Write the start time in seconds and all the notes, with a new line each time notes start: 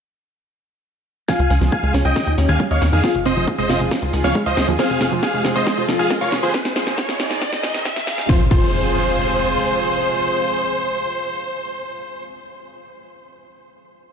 1.28 C#3 F3 G#3 F4 G#4 F5 G#5 G#6, kick, snare, closed hi-hat, riser, shaker
1.39 C#2, closed hi-hat, shaker
1.50 C#2 C#4, open hi-hat
1.61 C#2 F3, snare, closed hi-hat, shaker
1.72 F5 G#5 G#6, kick, closed hi-hat, shaker
1.83 C#2 G#3, closed hi-hat, shaker
1.94 C#2 C#4 C#5, snare, open hi-hat
2.05 C#2 D#5 G5 G6, closed hi-hat, shaker
2.16 A#2 D#3 G3 D#4 G4, kick, snare, closed hi-hat, shaker
2.27 D#2 D#4, closed hi-hat, shaker
2.38 D#2 C#4 C#5, open hi-hat
2.49 D#2 D#3 F5 G#5 G#6, closed hi-hat, shaker
2.60 G3, kick, closed hi-hat, shaker
2.71 D#2 C#5 D#5 F5 F6, closed hi-hat, shaker
2.82 D#2, snare, open hi-hat
2.93 F2 D#3 G#4 F5 F6, closed hi-hat, shaker
3.04 C3 F3 G#3 F4 G#4 F5, kick, snare, closed hi-hat, shaker
3.15 F1, closed hi-hat, shaker
3.26 F1 C4 C5 D#5 D#6, open hi-hat
3.37 F1 F3, closed hi-hat, shaker
3.48 kick, closed hi-hat, shaker
3.58 F1 G#3 C5 D#5 D#6, open hi-hat, shaker
3.69 F1 C4 F4 F5, snare, open hi-hat
3.80 F1, closed hi-hat, shaker
3.91 C#3 F3 G#3, kick, snare, closed hi-hat, shaker
4.02 C#2 F4, closed hi-hat, shaker
4.13 C#2, open hi-hat
4.24 C#2 F3 C#5 F5 F6, snare, closed hi-hat, shaker
4.35 G#3, kick, closed hi-hat, shaker
4.46 C#2 C5 D#5 F5 D#6, closed hi-hat, shaker
4.57 C#2, snare, open hi-hat
4.68 D#2 F3, closed hi-hat, shaker
4.79 C3 F3 C4 F4 G#4 C5 F5 F6, kick, snare, closed hi-hat, shaker
4.90 F1, closed hi-hat, shaker
5.01 F1 C4, snare, open hi-hat
5.12 F1 F3, closed hi-hat, shaker
5.23 G#4 F5 F6, kick, snare, closed hi-hat, shaker
5.34 F1 G#3, closed hi-hat, shaker
5.45 F1 G#3 C4 G#4, snare, open hi-hat
5.55 F1 C5 D#5 D#6, closed hi-hat, shaker
5.67 F3, kick, snare, closed hi-hat, shaker
5.77 F1 F4, closed hi-hat, shaker
5.89 F1 F3 F4, snare, open hi-hat
5.99 F1 F3 G#4 F5 F6, closed hi-hat, shaker
6.10 G#3, kick, snare, closed hi-hat, shaker
6.21 F1 F4 C#5 F5 C#6, closed hi-hat, shaker
6.32 F1, snare, open hi-hat
6.43 G1 F3 G#4 C5 C6, closed hi-hat, shaker
6.54 D#3 D#4, kick, snare, closed hi-hat, shaker
6.65 snare, closed hi-hat, shaker
6.76 snare, open hi-hat
6.87 snare, closed hi-hat, shaker
6.98 kick, snare, closed hi-hat, shaker
7.09 snare, open hi-hat, shaker
7.20 snare, open hi-hat
7.31 snare, closed hi-hat, shaker
7.42 kick, snare, closed hi-hat, shaker
7.53 snare, closed hi-hat, shaker
7.63 snare, open hi-hat
7.74 snare, closed hi-hat, shaker
7.85 kick, snare, closed hi-hat, shaker
7.96 snare, closed hi-hat, shaker
8.07 snare, open hi-hat
8.18 snare, closed hi-hat, shaker
8.29 F1 C3 F3 G#3 F4 G#4 C5 C6, kick, snare, impact
8.51 F1 F3 F4 C5 C6, kick, crash